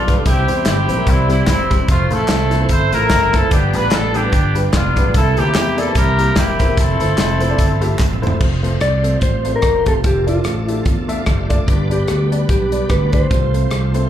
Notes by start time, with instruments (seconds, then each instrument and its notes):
Already playing: fingered electric bass B1, tonewheel organ F3 B3 D4 G4, horn section D4 F4
0.07 upright piano G3 D4 F4 B4, kick, snare, closed hi-hat, tambourine
0.16 upright piano G3 D4 F4 A4
0.25 fingered electric bass C2, upright piano C3, tonewheel organ E3 G3 C4 F#4, horn section C4 E4 G4, kick, closed hi-hat, tambourine
0.31 tonewheel organ G4
0.48 fingered electric bass E2, upright piano G3 C4 E4 C5, closed hi-hat, tambourine
0.65 fingered electric bass G1, horn section C4 E4 G4, snare, clap, closed hi-hat, tambourine
0.88 fingered electric bass A#1, upright piano G3 C4 E4 C5, closed hi-hat, tambourine
0.97 upright piano G3 C4 E4 A#4
1.07 fingered electric bass C2, horn section G3 C4 E4, kick, closed hi-hat, tambourine
1.29 upright piano G3 C4 E4 C5, horn section E4, closed hi-hat, tambourine
1.47 fingered electric bass E1, horn section G3 C4 E4, kick, snare, clap, closed hi-hat, tambourine
1.70 upright piano G3 C4 E4 C5, kick, snare, closed hi-hat, tambourine
1.79 upright piano G3 C4 E4 G4
1.88 fingered electric bass F1, tonewheel organ F3 C4 E4 C5, horn section A3 C4 F4, kick, closed hi-hat, tambourine
2.10 fingered electric bass A1, upright piano A3 E4 F4 C5, horn section C4 E4 A4, closed hi-hat, tambourine
2.28 fingered electric bass C2, snare, clap, closed hi-hat, tambourine
2.51 upright piano A3 E4 F4 C5, snare, closed hi-hat, tambourine
2.60 upright piano A3 E4 F4 C5
2.69 fingered electric bass G1, horn section E4 A4 C5, kick, closed hi-hat, tambourine
2.92 fingered electric bass A1, upright piano A3 E4 F4 C5, horn section E4 A#4, closed hi-hat, tambourine
3.09 fingered electric bass F#1, kick, snare, clap, closed hi-hat, tambourine
3.32 upright piano A3 E4 F4 C5, horn section A4, kick, snare, closed hi-hat, tambourine
3.42 upright piano A3 E4 F4 C5
3.51 fingered electric bass G1, upright piano G2, tonewheel organ F3 B3 D4 G4, horn section B3 D4 G4, kick, closed hi-hat, tambourine
3.73 fingered electric bass A1, upright piano G3 D4 F4 B4, horn section B4, closed hi-hat, tambourine
3.91 fingered electric bass A1, horn section A4, snare, clap, closed hi-hat, tambourine
4.14 upright piano G3 D4 F4 A4, horn section B3 D4 G4, closed hi-hat, tambourine
4.23 upright piano G3 D4 F4 B4
4.32 fingered electric bass G1, kick, closed hi-hat, tambourine
4.55 upright piano G3 D4 F4 B4, closed hi-hat, tambourine
4.72 fingered electric bass F1, horn section B3 D4 F4, kick, snare, clap, closed hi-hat, tambourine
4.96 fingered electric bass A1, upright piano G3 D4 F4 B4, kick, snare, closed hi-hat, tambourine
5.05 upright piano G3 D4 F4 B4
5.14 fingered electric bass C2, upright piano C3, tonewheel organ E3 A#3 C4 F#4, horn section E4 A4, kick, closed hi-hat, tambourine
5.20 tonewheel organ G4
5.37 fingered electric bass D2, upright piano A#3 E4 G4 C5, horn section A#3 E4 G4, closed hi-hat, tambourine
5.54 fingered electric bass E2, snare, clap, closed hi-hat, tambourine
5.77 upright piano A#3 E4 G4 D5, horn section A4, snare, closed hi-hat, tambourine
5.87 upright piano A#3 E4 G4 C5
5.95 fingered electric bass C2, horn section E4 G4 A#4, kick, closed hi-hat, tambourine
6.18 upright piano A#3 E4 G4 A#4, closed hi-hat, tambourine
6.35 fingered electric bass E1, horn section A#3 E4 G4, kick, snare, clap, closed hi-hat, tambourine
6.59 upright piano A#3 E4 G4 C5, kick, snare, closed hi-hat, tambourine
6.68 upright piano A#3 E4 G4 A#4
6.77 fingered electric bass F1, tonewheel organ F3 C4 E4 A4, horn section C4 E4 A4, kick, closed hi-hat, tambourine
7.00 fingered electric bass G1, upright piano A3 E4 F4 C5, closed hi-hat, tambourine
7.17 fingered electric bass F1, snare, clap, closed hi-hat, tambourine
7.40 upright piano A3 E4 F4 C5, closed hi-hat, tambourine
7.50 upright piano A3 E4 F4 D5
7.58 fingered electric bass G1, kick, closed hi-hat, tambourine
7.81 upright piano A3 E4 F4 G4, closed hi-hat, tambourine
7.99 fingered electric bass E1, kick, snare, clap, tambourine
8.13 mid tom
8.22 upright piano A3 E4 F4 C5, tambourine
8.27 floor tom
8.31 upright piano A3 E4 F4 C5
8.40 fingered electric bass F1, french horn section C3 C4 F4, tonewheel organ F3 C4 C5, kick, crash
8.63 upright piano A3 C4 F4 C5, closed hi-hat
8.81 fingered electric bass C2, clean electric guitar D5, cross-stick, closed hi-hat
9.03 upright piano A3 C4 F4 A4, cross-stick, closed hi-hat
9.21 fingered electric bass A1, clean electric guitar C5, kick, closed hi-hat
9.44 upright piano A3 C4 F4 C5, closed hi-hat
9.56 clean electric guitar A#4
9.62 fingered electric bass E1, kick, cross-stick, closed hi-hat
9.85 upright piano A3 C4 F4 G4, clean electric guitar A4, kick, cross-stick, closed hi-hat
10.03 fingered electric bass F1, tonewheel organ E3 A3 D4 A4, french horn section D4, clean electric guitar G4, kick, closed hi-hat
10.09 tonewheel organ F4
10.27 upright piano A3 D4 F4 D5, clean electric guitar F4, closed hi-hat
10.44 fingered electric bass A1, cross-stick, closed hi-hat
10.68 upright piano A3 D4 F4 G4, clean electric guitar E4, closed hi-hat
10.85 fingered electric bass E2, kick, closed hi-hat
11.08 upright piano A3 D4 F4 E5, tonewheel organ A4 D5 F5, closed hi-hat
11.26 fingered electric bass F#1, tonewheel organ G4 E5 F5, kick, cross-stick, closed hi-hat
11.49 upright piano A3 D4 F4 D5, tonewheel organ F4 D5 A5, kick, closed hi-hat
11.66 fingered electric bass G1, upright piano G2, tonewheel organ G3 B3 D4 B4, french horn section G3 B3 G4, kick, closed hi-hat
11.90 upright piano B3 D4 G4 D5, clean electric guitar G4, closed hi-hat
12.08 fingered electric bass D2, cross-stick, closed hi-hat
12.32 upright piano B3 D4 G4 D5, closed hi-hat
12.49 fingered electric bass B1, clean electric guitar G4, kick, closed hi-hat
12.72 upright piano B3 D4 G4 D5, closed hi-hat
12.89 fingered electric bass D2, clean electric guitar B4, kick, cross-stick, closed hi-hat
13.12 upright piano B3 D4 G4 D5, clean electric guitar C5, kick, cross-stick, closed hi-hat
13.30 fingered electric bass C2, upright piano C3, french horn section F3 A3 C4 F4, tonewheel organ A3 C4 F4 C5, kick, closed hi-hat
13.54 upright piano A3 C4 F4 C5, closed hi-hat
13.71 fingered electric bass C2, cross-stick, closed hi-hat
13.94 upright piano A3 C4 F4 C5, cross-stick, closed hi-hat
14.07 clean electric guitar B4